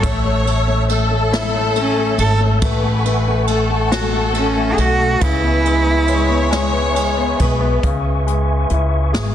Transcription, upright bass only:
0.03 A1
2.18 G#1
2.62 A1
4.78 B1
5.21 C#2
7.40 B1
7.83 C#2
8.71 C#2
9.14 G#1

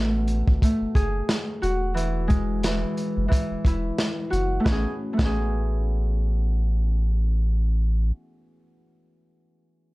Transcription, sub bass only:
Already playing: A1
0.48 G#1
0.81 F#1
0.95 F#1
1.63 E1
3.17 F#1
3.51 E1
3.65 E1
4.32 F#1
4.66 A1
5.19 A1

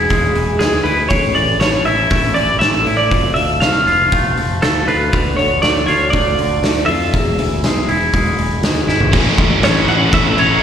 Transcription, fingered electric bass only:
0.10 E1
0.34 E1
0.60 D2
0.84 D2
1.11 A1
1.35 A1
1.60 A1
1.84 A1
2.11 A1
2.35 A1
2.60 A1
2.86 A2
3.11 F1
3.36 D2
3.61 C2
3.86 F1
4.12 F1
4.38 F1
4.63 D2
4.88 D2
5.13 D2
5.37 D2
5.63 D2
5.88 D2
6.14 D2
6.38 D2
6.63 D2
6.88 F2
7.14 E1
7.38 D2
7.63 B1
7.88 E1
8.13 E1
8.37 E1
8.61 D2
8.87 G#1
9.13 A1
9.38 A1
9.60 A1
9.86 A1
10.13 A1
10.37 A1

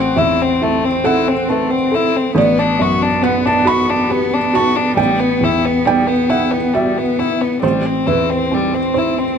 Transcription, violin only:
Already playing: C4
0.18 E4
0.42 C4
0.63 A3
0.85 C4
1.05 E4
1.28 C4
1.49 A3
1.71 C4
1.95 E4
2.16 C4
2.37 B3
2.59 D4
2.81 F#4
3.02 D4
3.23 B3
3.45 D4
3.67 F#4
3.90 D4
4.11 B3
4.34 D4
4.55 F#4
4.76 D4
4.97 G3
5.20 B3
5.44 E4
5.65 B3
5.86 G3
6.07 B3
6.30 E4
6.51 B3
6.74 G3
6.98 B3
7.20 E4
7.41 B3
7.63 G3
7.86 C4
8.07 E4
8.30 C4
8.54 G3
8.75 C4
8.98 E4
9.19 C4

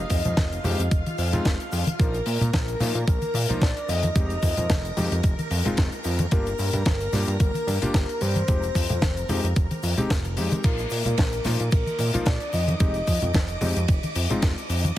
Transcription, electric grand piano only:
0.64 G#3 C4 D#4 G4
1.33 G#3 C4 D#4 F4
1.99 F3 A#3 D#4 F4
2.80 F3 A#3 D#4 F4
3.49 F3 A#3 D#4 F4
4.16 G#3 C4 D#4 G4
4.97 G#3 C4 D#4 G4
5.65 G#3 C4 D#4 F4
6.32 A#3 D4 F4 G4
7.13 A#3 D4 F4 G4
7.82 A#3 D4 F4 G4
8.48 G#3 C4 D#4 G4
9.29 G#3 C4 D#4 G4
9.97 G#3 C4 D#4 G4
10.37 G#3 C4 D#4 G4
10.64 F3 A#3 D#4 F4
11.46 F3 A#3 D#4 F4
12.13 F3 A#3 D#4 F4
12.80 G#3 C4 D#4 G4
13.61 G#3 C4 D#4 G4
14.30 G#3 C4 D#4 F4

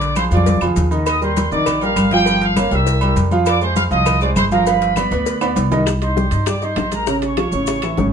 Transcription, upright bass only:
Already playing: A#1
0.31 F2
0.61 F2
0.76 D#2
1.51 A#1
1.96 G1
2.71 C2
3.16 F2
3.91 C2
4.36 G1
5.11 D2
5.56 C2
6.31 G2
6.76 A#1
7.52 A1
7.98 G#1

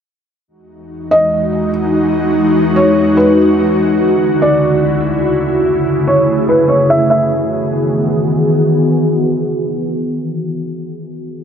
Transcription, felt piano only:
1.11 D#5
2.76 C#5
3.17 B4
4.42 D5
6.08 C#5
6.49 B4
6.68 C#5
6.90 E5
7.10 E5

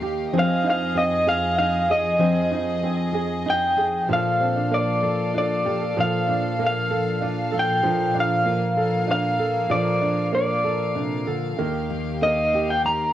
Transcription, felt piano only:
Already playing: A#3
0.02 G4
0.34 C4
0.64 D#4
0.95 C4
1.27 G#4
1.58 D#4
1.90 G#4
2.20 C4
2.51 D#4
2.83 C4
3.14 G#4
3.46 D#4
3.78 G#4
4.09 F3
4.40 C4
4.56 D4
4.71 A#3
5.02 A4
5.34 D4
5.65 G4
5.81 A4
5.97 F3
6.28 D4
6.59 A#3
6.90 A4
7.21 D4
7.51 A4
7.83 F3
8.14 D4
8.45 A#3
8.77 A4
9.08 D4
9.40 A4
9.70 F3
10.01 D4
10.33 A#3
10.64 A4
10.95 D4
11.27 A4
11.59 A#3
12.22 A#3
12.54 G4

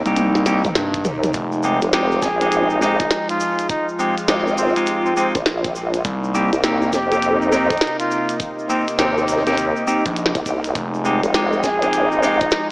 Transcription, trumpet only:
2.22 G#4
2.71 D#4
3.30 F4
3.70 D#4
4.58 C4
5.06 C4
5.16 C4
6.93 G4
7.41 D#4
8.00 F4
8.69 C4
8.99 C4
9.17 C4
11.64 G#4
12.12 D#4

